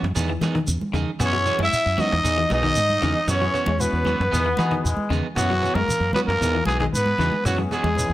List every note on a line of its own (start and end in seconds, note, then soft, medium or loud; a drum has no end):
0.03 0.13 F#2 medium
0.03 cajon slap medium
0.15 0.36 E2 loud
0.15 0.31 D#3 medium
0.15 0.31 B3 loud
0.15 0.32 D#4 medium
0.15 0.32 G#4 loud
0.15 shekere medium
0.30 0.43 E3 medium
0.41 0.57 D#3 medium
0.41 0.62 E3 loud
0.41 0.58 B3 medium
0.41 0.58 D#4 medium
0.41 0.58 G#4 medium
0.41 cajon slap medium
0.41 high conga loud
0.41 shekere soft
0.55 0.68 D#3 medium
0.55 cajon bass medium
0.67 0.78 E2 loud
0.67 cajon slap soft
0.67 low conga medium
0.67 shekere loud
0.81 muted fingered electric bass stroke soft
0.81 cajon slap soft
0.81 high conga medium
0.93 1.04 E2 medium
0.93 1.07 C#3 medium
0.93 1.10 D#3 medium
0.93 1.10 D#4 medium
0.93 1.10 G#4 medium
0.93 cajon bass medium
0.93 cajon slap soft
0.93 low conga medium
0.93 shekere soft
1.19 1.50 F#2 loud
1.19 1.35 E3 medium
1.19 1.36 B3 medium
1.19 1.58 B3 medium
1.19 1.58 C#4 medium
1.19 1.36 C#4 medium
1.19 1.58 E4 medium
1.19 1.36 F#4 medium
1.19 1.58 G#4 medium
1.19 cajon bass medium
1.19 shekere medium
1.25 1.60 C#4 medium
1.25 1.59 C#5 loud
1.33 1.46 F#3 medium
1.33 cajon bass medium
1.46 1.62 E3 medium
1.46 1.62 B3 medium
1.46 1.62 C#4 medium
1.46 1.62 F#4 medium
1.46 cajon bass medium
1.46 shekere soft
1.59 1.69 F#2 medium
1.59 1.73 G#3 medium
1.59 2.02 E4 loud
1.59 high conga loud
1.64 2.02 E5 loud
1.72 muted fingered electric bass stroke soft
1.72 cajon slap soft
1.72 shekere medium
1.86 1.96 F#2 medium
1.86 cajon slap soft
1.97 2.14 E3 medium
1.97 2.11 F#3 medium
1.97 2.14 B3 medium
1.97 2.14 C#4 medium
1.97 2.52 D#4 loud
1.97 2.14 F#4 medium
1.97 2.51 D#5 loud
1.97 high conga medium
1.97 low conga medium
1.97 shekere soft
2.12 2.22 E2 loud
2.12 cajon slap medium
2.23 2.44 E2 loud
2.23 2.40 E3 medium
2.23 2.40 D#4 medium
2.23 2.40 G#4 medium
2.23 muted clean electric guitar stroke medium
2.23 shekere medium
2.37 2.51 E3 medium
2.37 2.42 F#4 medium
2.37 2.42 G#4 medium
2.49 2.71 B1 loud
2.49 2.63 E3 medium
2.49 2.63 B3 medium
2.49 2.70 B3 medium
2.49 2.62 D#4 medium
2.49 2.70 D#4 medium
2.49 3.26 D#4 loud
2.49 2.70 F#4 medium
2.49 2.62 G#4 medium
2.49 2.70 G#4 medium
2.49 cajon slap medium
2.49 high conga loud
2.49 shekere soft
2.54 3.26 D#5 loud
2.63 2.76 D#3 medium
2.63 2.79 B3 soft
2.63 2.79 D#4 soft
2.63 2.79 G#4 medium
2.63 cajon bass medium
2.75 2.97 G#2 loud
2.75 shekere medium
2.90 high conga medium
3.02 3.13 E2 medium
3.02 3.16 C#3 medium
3.02 3.18 E3 medium
3.02 3.12 B3 medium
3.02 3.18 B3 medium
3.02 3.12 D#4 medium
3.02 3.19 D#4 medium
3.02 3.12 F#4 medium
3.02 3.19 G#4 medium
3.02 3.12 A#4 loud
3.02 low conga medium
3.02 shekere soft
3.28 3.48 F#2 loud
3.28 3.44 E3 medium
3.28 3.44 B3 medium
3.28 3.44 C#4 medium
3.28 3.83 C#4 medium
3.28 3.33 E4 medium
3.28 3.45 F#4 medium
3.28 3.33 G#4 loud
3.28 3.82 C#5 loud
3.28 cajon bass loud
3.28 shekere medium
3.41 3.55 F#3 medium
3.41 3.55 B3 medium
3.41 3.55 C#4 medium
3.41 3.55 E4 medium
3.41 3.55 G#4 medium
3.41 cajon bass medium
3.54 3.70 E3 medium
3.54 3.70 B3 medium
3.54 3.70 C#4 medium
3.54 3.70 F#4 medium
3.54 cajon bass medium
3.54 cajon slap soft
3.54 shekere soft
3.66 3.87 E2 medium
3.66 3.81 G#3 medium
3.66 high conga loud
3.79 4.09 B3 medium
3.79 5.11 B3 medium
3.79 4.09 C#4 medium
3.79 4.09 E4 medium
3.79 4.09 F#4 medium
3.79 5.11 B4 medium
3.79 high conga medium
3.79 shekere medium
3.93 4.13 E2 medium
4.05 4.22 E3 medium
4.05 4.20 F#3 medium
4.05 4.22 B3 medium
4.05 4.22 C#4 medium
4.05 4.23 F#4 medium
4.05 high conga medium
4.05 low conga medium
4.05 shekere soft
4.20 4.30 F#2 medium
4.20 cajon slap medium
4.32 4.53 E2 loud
4.32 4.48 D#3 medium
4.32 4.48 B3 medium
4.32 4.81 B3 loud
4.32 4.48 D#4 medium
4.32 4.48 G#4 medium
4.32 shekere medium
4.46 4.59 E3 medium
4.57 4.74 D#3 medium
4.57 4.79 E3 loud
4.57 4.87 B3 loud
4.57 4.74 D#4 medium
4.57 4.87 D#4 medium
4.57 4.87 F#4 medium
4.57 4.74 G#4 medium
4.57 4.87 G#4 loud
4.57 cajon slap medium
4.57 high conga loud
4.57 shekere soft
4.71 4.85 D#3 medium
4.71 cajon bass medium
4.71 cajon slap soft
4.84 4.95 E2 loud
4.84 5.21 G#3 loud
4.84 cajon slap soft
4.84 shekere medium
4.97 muted fingered electric bass stroke soft
4.97 high conga medium
5.10 5.20 E2 medium
5.10 5.24 C#3 medium
5.10 5.26 D#3 medium
5.10 5.26 B3 medium
5.10 5.27 D#4 medium
5.10 5.27 G#4 medium
5.10 low conga medium
5.10 shekere soft
5.36 5.67 F#2 loud
5.36 5.52 E3 medium
5.36 5.78 F#3 medium
5.36 5.52 B3 medium
5.36 5.75 B3 medium
5.36 5.52 C#4 medium
5.36 5.75 C#4 medium
5.36 5.75 E4 medium
5.36 5.76 F#4 loud
5.36 5.53 F#4 medium
5.36 5.75 G#4 medium
5.36 cajon bass loud
5.36 shekere medium
5.49 5.63 F#3 medium
5.49 cajon bass medium
5.62 5.78 E3 medium
5.62 5.78 B3 medium
5.62 5.78 C#4 medium
5.62 5.79 F#4 medium
5.62 cajon bass medium
5.62 shekere soft
5.75 5.85 F#2 medium
5.75 5.89 G#3 medium
5.75 6.14 A#3 medium
5.75 6.13 A#4 loud
5.75 high conga loud
5.88 muted fingered electric bass stroke soft
5.88 low conga medium
5.88 shekere medium
6.00 6.11 F#2 medium
6.13 6.30 E3 medium
6.13 6.28 F#3 medium
6.13 6.21 B3 medium
6.13 6.31 B3 medium
6.13 6.31 C#4 medium
6.13 6.31 F#4 medium
6.13 6.20 B4 loud
6.13 high conga medium
6.13 low conga medium
6.13 shekere soft
6.26 6.38 F#2 loud
6.26 6.63 A#3 medium
6.26 6.64 A#4 loud
6.26 cajon slap medium
6.41 6.61 E2 loud
6.41 6.57 E3 medium
6.41 6.57 B3 medium
6.41 6.57 D#4 medium
6.41 6.57 G#4 medium
6.41 shekere medium
6.54 6.68 E3 medium
6.54 6.59 F#4 medium
6.54 6.59 G#4 medium
6.65 6.86 B1 loud
6.65 6.83 E3 medium
6.65 6.79 G#3 medium
6.65 6.86 B3 medium
6.65 6.83 B3 medium
6.65 6.86 D#4 medium
6.65 6.83 D#4 medium
6.65 6.86 F#4 medium
6.65 6.79 G#4 loud
6.65 6.86 G#4 medium
6.65 6.83 G#4 medium
6.65 cajon slap medium
6.65 high conga loud
6.70 shekere soft
6.79 6.94 D#3 medium
6.79 6.87 G#3 medium
6.79 6.85 G#4 medium
6.79 cajon bass medium
6.79 cajon slap soft
6.93 7.13 G#2 loud
6.93 7.42 B3 medium
6.93 7.42 B4 loud
6.93 shekere loud
7.06 cajon slap soft
7.06 high conga medium
7.18 7.29 E2 loud
7.18 7.32 C#3 medium
7.18 7.35 E3 medium
7.18 7.28 B3 medium
7.18 7.35 B3 medium
7.18 7.29 D#4 medium
7.18 7.35 D#4 medium
7.18 7.29 F#4 medium
7.18 7.36 G#4 medium
7.18 7.29 B4 loud
7.18 low conga medium
7.18 shekere soft
7.32 high conga medium
7.45 7.65 F#2 loud
7.45 7.61 E3 medium
7.45 7.57 F#3 medium
7.45 7.61 B3 medium
7.45 7.61 C#4 medium
7.45 7.49 E4 medium
7.45 7.57 F#4 medium
7.45 7.61 F#4 medium
7.45 7.50 G#4 loud
7.45 cajon bass medium
7.45 shekere medium
7.58 7.71 F#3 medium
7.58 7.72 B3 medium
7.58 7.72 C#4 medium
7.58 7.72 E4 medium
7.58 7.72 G#4 medium
7.58 cajon bass medium
7.58 cajon slap soft
7.71 7.87 E3 medium
7.71 8.13 G#3 medium
7.71 7.87 B3 medium
7.71 7.88 C#4 medium
7.71 7.88 F#4 medium
7.71 8.13 G#4 loud
7.71 cajon bass medium
7.71 cajon slap soft
7.71 shekere soft
7.84 8.04 E2 medium
7.84 7.97 G#3 medium
7.84 high conga loud
7.95 8.13 B3 medium
7.95 8.13 C#4 medium
7.95 8.13 E4 medium
7.95 8.13 G#4 medium
7.95 low conga medium
7.95 shekere medium
8.09 8.13 E2 loud